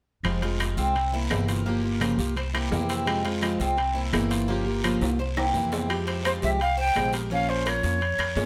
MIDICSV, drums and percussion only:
0, 0, Header, 1, 2, 480
1, 0, Start_track
1, 0, Key_signature, -4, "minor"
1, 0, Tempo, 352734
1, 340, Time_signature, 4, 2, 24, 8
1, 11508, End_track
2, 0, Start_track
2, 0, Title_t, "Drums"
2, 325, Note_on_c, 9, 75, 50
2, 336, Note_on_c, 9, 65, 79
2, 338, Note_on_c, 9, 74, 59
2, 461, Note_off_c, 9, 75, 0
2, 472, Note_off_c, 9, 65, 0
2, 474, Note_off_c, 9, 74, 0
2, 576, Note_on_c, 9, 65, 55
2, 712, Note_off_c, 9, 65, 0
2, 815, Note_on_c, 9, 73, 55
2, 818, Note_on_c, 9, 75, 57
2, 821, Note_on_c, 9, 65, 77
2, 821, Note_on_c, 9, 66, 50
2, 951, Note_off_c, 9, 73, 0
2, 954, Note_off_c, 9, 75, 0
2, 957, Note_off_c, 9, 65, 0
2, 957, Note_off_c, 9, 66, 0
2, 1052, Note_on_c, 9, 73, 61
2, 1188, Note_off_c, 9, 73, 0
2, 1298, Note_on_c, 9, 74, 64
2, 1305, Note_on_c, 9, 65, 55
2, 1434, Note_off_c, 9, 74, 0
2, 1441, Note_off_c, 9, 65, 0
2, 1773, Note_on_c, 9, 75, 53
2, 1779, Note_on_c, 9, 73, 55
2, 1780, Note_on_c, 9, 65, 80
2, 1780, Note_on_c, 9, 66, 71
2, 1909, Note_off_c, 9, 75, 0
2, 1915, Note_off_c, 9, 73, 0
2, 1916, Note_off_c, 9, 65, 0
2, 1916, Note_off_c, 9, 66, 0
2, 2020, Note_on_c, 9, 73, 66
2, 2023, Note_on_c, 9, 65, 57
2, 2156, Note_off_c, 9, 73, 0
2, 2159, Note_off_c, 9, 65, 0
2, 2256, Note_on_c, 9, 74, 59
2, 2392, Note_off_c, 9, 74, 0
2, 2738, Note_on_c, 9, 73, 56
2, 2739, Note_on_c, 9, 75, 57
2, 2740, Note_on_c, 9, 65, 78
2, 2740, Note_on_c, 9, 66, 50
2, 2874, Note_off_c, 9, 73, 0
2, 2875, Note_off_c, 9, 75, 0
2, 2876, Note_off_c, 9, 65, 0
2, 2876, Note_off_c, 9, 66, 0
2, 2977, Note_on_c, 9, 73, 64
2, 3113, Note_off_c, 9, 73, 0
2, 3219, Note_on_c, 9, 74, 58
2, 3227, Note_on_c, 9, 65, 55
2, 3355, Note_off_c, 9, 74, 0
2, 3363, Note_off_c, 9, 65, 0
2, 3464, Note_on_c, 9, 65, 78
2, 3464, Note_on_c, 9, 75, 61
2, 3600, Note_off_c, 9, 65, 0
2, 3600, Note_off_c, 9, 75, 0
2, 3698, Note_on_c, 9, 66, 70
2, 3705, Note_on_c, 9, 73, 59
2, 3834, Note_off_c, 9, 66, 0
2, 3841, Note_off_c, 9, 73, 0
2, 3935, Note_on_c, 9, 73, 68
2, 3944, Note_on_c, 9, 65, 57
2, 4071, Note_off_c, 9, 73, 0
2, 4080, Note_off_c, 9, 65, 0
2, 4169, Note_on_c, 9, 74, 65
2, 4183, Note_on_c, 9, 65, 82
2, 4184, Note_on_c, 9, 75, 49
2, 4305, Note_off_c, 9, 74, 0
2, 4319, Note_off_c, 9, 65, 0
2, 4320, Note_off_c, 9, 75, 0
2, 4428, Note_on_c, 9, 65, 55
2, 4564, Note_off_c, 9, 65, 0
2, 4653, Note_on_c, 9, 73, 53
2, 4660, Note_on_c, 9, 75, 60
2, 4665, Note_on_c, 9, 65, 77
2, 4665, Note_on_c, 9, 66, 52
2, 4789, Note_off_c, 9, 73, 0
2, 4796, Note_off_c, 9, 75, 0
2, 4801, Note_off_c, 9, 65, 0
2, 4801, Note_off_c, 9, 66, 0
2, 4896, Note_on_c, 9, 73, 62
2, 5032, Note_off_c, 9, 73, 0
2, 5140, Note_on_c, 9, 74, 60
2, 5147, Note_on_c, 9, 65, 57
2, 5276, Note_off_c, 9, 74, 0
2, 5283, Note_off_c, 9, 65, 0
2, 5623, Note_on_c, 9, 75, 57
2, 5624, Note_on_c, 9, 73, 59
2, 5626, Note_on_c, 9, 65, 81
2, 5626, Note_on_c, 9, 66, 75
2, 5759, Note_off_c, 9, 75, 0
2, 5760, Note_off_c, 9, 73, 0
2, 5763, Note_off_c, 9, 65, 0
2, 5763, Note_off_c, 9, 66, 0
2, 5866, Note_on_c, 9, 73, 68
2, 5867, Note_on_c, 9, 65, 60
2, 6002, Note_off_c, 9, 73, 0
2, 6003, Note_off_c, 9, 65, 0
2, 6103, Note_on_c, 9, 74, 62
2, 6240, Note_off_c, 9, 74, 0
2, 6585, Note_on_c, 9, 73, 58
2, 6588, Note_on_c, 9, 75, 59
2, 6590, Note_on_c, 9, 65, 80
2, 6590, Note_on_c, 9, 66, 53
2, 6721, Note_off_c, 9, 73, 0
2, 6724, Note_off_c, 9, 75, 0
2, 6726, Note_off_c, 9, 65, 0
2, 6726, Note_off_c, 9, 66, 0
2, 6823, Note_on_c, 9, 73, 66
2, 6833, Note_on_c, 9, 65, 61
2, 6959, Note_off_c, 9, 73, 0
2, 6969, Note_off_c, 9, 65, 0
2, 7064, Note_on_c, 9, 74, 60
2, 7200, Note_off_c, 9, 74, 0
2, 7310, Note_on_c, 9, 75, 57
2, 7312, Note_on_c, 9, 65, 69
2, 7447, Note_off_c, 9, 75, 0
2, 7448, Note_off_c, 9, 65, 0
2, 7542, Note_on_c, 9, 73, 59
2, 7678, Note_off_c, 9, 73, 0
2, 7783, Note_on_c, 9, 73, 63
2, 7792, Note_on_c, 9, 66, 74
2, 7919, Note_off_c, 9, 73, 0
2, 7928, Note_off_c, 9, 66, 0
2, 8021, Note_on_c, 9, 74, 58
2, 8028, Note_on_c, 9, 75, 52
2, 8029, Note_on_c, 9, 65, 80
2, 8157, Note_off_c, 9, 74, 0
2, 8164, Note_off_c, 9, 75, 0
2, 8165, Note_off_c, 9, 65, 0
2, 8271, Note_on_c, 9, 65, 59
2, 8408, Note_off_c, 9, 65, 0
2, 8507, Note_on_c, 9, 73, 58
2, 8509, Note_on_c, 9, 65, 79
2, 8509, Note_on_c, 9, 66, 48
2, 8510, Note_on_c, 9, 75, 58
2, 8643, Note_off_c, 9, 73, 0
2, 8645, Note_off_c, 9, 65, 0
2, 8645, Note_off_c, 9, 66, 0
2, 8646, Note_off_c, 9, 75, 0
2, 8741, Note_on_c, 9, 73, 62
2, 8877, Note_off_c, 9, 73, 0
2, 8979, Note_on_c, 9, 74, 60
2, 8996, Note_on_c, 9, 65, 60
2, 9115, Note_off_c, 9, 74, 0
2, 9132, Note_off_c, 9, 65, 0
2, 9453, Note_on_c, 9, 73, 56
2, 9474, Note_on_c, 9, 65, 78
2, 9474, Note_on_c, 9, 66, 75
2, 9474, Note_on_c, 9, 75, 59
2, 9589, Note_off_c, 9, 73, 0
2, 9610, Note_off_c, 9, 65, 0
2, 9610, Note_off_c, 9, 66, 0
2, 9610, Note_off_c, 9, 75, 0
2, 9698, Note_on_c, 9, 73, 67
2, 9714, Note_on_c, 9, 65, 57
2, 9834, Note_off_c, 9, 73, 0
2, 9850, Note_off_c, 9, 65, 0
2, 9935, Note_on_c, 9, 74, 60
2, 10071, Note_off_c, 9, 74, 0
2, 10417, Note_on_c, 9, 73, 55
2, 10433, Note_on_c, 9, 65, 81
2, 10433, Note_on_c, 9, 66, 52
2, 10437, Note_on_c, 9, 75, 57
2, 10553, Note_off_c, 9, 73, 0
2, 10569, Note_off_c, 9, 65, 0
2, 10569, Note_off_c, 9, 66, 0
2, 10573, Note_off_c, 9, 75, 0
2, 10661, Note_on_c, 9, 73, 63
2, 10797, Note_off_c, 9, 73, 0
2, 10903, Note_on_c, 9, 74, 61
2, 10914, Note_on_c, 9, 65, 57
2, 11039, Note_off_c, 9, 74, 0
2, 11051, Note_off_c, 9, 65, 0
2, 11144, Note_on_c, 9, 75, 56
2, 11158, Note_on_c, 9, 65, 81
2, 11280, Note_off_c, 9, 75, 0
2, 11294, Note_off_c, 9, 65, 0
2, 11387, Note_on_c, 9, 66, 72
2, 11387, Note_on_c, 9, 73, 56
2, 11508, Note_off_c, 9, 66, 0
2, 11508, Note_off_c, 9, 73, 0
2, 11508, End_track
0, 0, End_of_file